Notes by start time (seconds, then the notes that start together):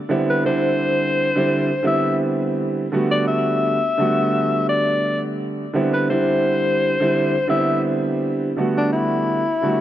0.09 D3 G3 B3 C4 E4
0.30 B4
0.45 D3 G3 C4 E4 C5
1.35 D3 G3 C4 E4
1.83 D3 G3 B3 C4 E4
1.87 E5
2.92 D3 G3 A3 B3 F#4
3.11 D5
3.28 E5
3.98 D3 G3 A3 B3 F#4
4.69 D5
5.74 D3 G3 B3 C4 E4
5.94 B4
6.09 D3 G3 C4 E4 C5
7.00 D3 G3 C4 E4
7.48 D3 G3 B3 C4 E4 E5
8.56 D3 G3 A3 B3 F#4
8.77 D4
8.93 E4
9.62 D3 G3 A3 B3 F#4